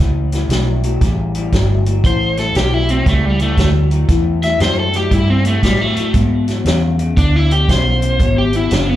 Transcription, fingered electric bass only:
0.00 0.48 C#2 medium
0.49 0.99 B1 loud
1.01 1.51 A1 medium
1.52 2.02 G1 medium
2.04 2.54 A1 medium
2.55 3.05 B1 medium
3.06 3.56 C#2 medium
3.58 4.07 D2 medium
4.09 4.59 E2 medium
4.60 5.10 F#2 medium
5.11 5.61 G2 medium
5.63 5.94 A2 medium
5.97 muted fingered electric bass stroke soft
6.14 6.64 G#2 medium
6.65 7.15 E2 loud
7.17 7.67 D2 medium
7.69 8.18 B1 loud
8.19 8.70 G#1 medium
8.72 8.96 F#1 loud

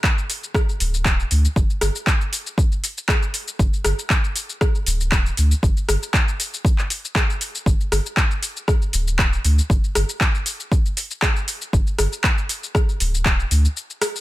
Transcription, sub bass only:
0.80 1.23 D1 medium
1.31 1.47 D2 medium
1.56 1.64 G1 loud
1.82 1.90 G1 loud
3.59 3.68 G1 loud
3.85 3.93 G1 medium
4.87 5.30 D1 medium
5.38 5.54 D2 medium
5.63 5.71 G1 loud
5.89 5.97 G1 medium
7.66 7.74 G1 loud
7.92 8.00 G1 medium
8.94 9.37 D1 loud
9.44 9.60 D2 medium
9.70 9.78 G1 loud
9.96 10.04 G1 medium
11.73 11.81 G1 loud
11.99 12.07 G1 medium
13.00 13.44 D1 medium
13.51 13.67 D2 medium

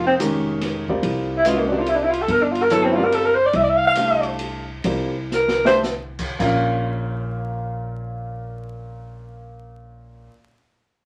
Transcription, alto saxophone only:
0.07 0.15 C4 medium
1.37 1.49 E4 medium
1.47 1.59 F4 medium
1.57 1.69 A#3 medium
1.67 1.80 D4 medium
1.79 1.91 F4 medium
1.89 1.97 E4 medium
1.96 2.05 D4 medium
2.03 2.12 E4 medium
2.10 2.23 F4 medium
2.22 2.33 A4 medium
2.31 2.44 A#4 medium
2.43 2.53 D4 medium
2.52 2.64 F4 medium
2.62 2.73 A#4 medium
2.72 2.85 A4 medium
2.84 2.95 C4 medium
2.94 3.06 F4 medium
3.04 3.16 A#4 medium
3.14 3.27 A4 medium
3.25 3.36 A#4 medium
3.35 3.47 C5 medium
3.46 3.58 D5 medium
3.56 3.65 E5 medium
3.63 3.71 D5 medium
3.70 3.78 E5 medium
3.77 3.86 F5 loud
3.87 4.27 F5 medium
5.34 5.63 A#4 medium
5.67 5.77 C5 medium

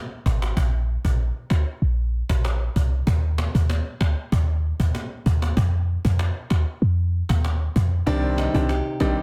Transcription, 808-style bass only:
0.26 0.53 G#1 medium
0.57 0.98 A#1 loud
1.05 1.31 A#1 loud
1.51 1.65 D2 loud
1.82 2.23 A#1 loud
2.30 2.69 A#1 medium
2.76 3.03 C2 medium
3.07 3.48 D#2 loud
3.55 3.81 D#2 loud
4.01 4.15 D2 medium
4.32 4.73 D#2 loud
4.80 4.92 D#2 medium
5.26 5.53 D#2 medium
5.57 5.98 F2 loud
6.05 6.31 F2 medium
6.51 6.65 D#2 medium
6.82 7.23 F2 loud
7.30 7.69 D#2 medium
7.76 8.02 F2 loud
8.07 8.48 C2 loud
8.55 8.81 C2 loud
9.01 9.15 A#1 medium

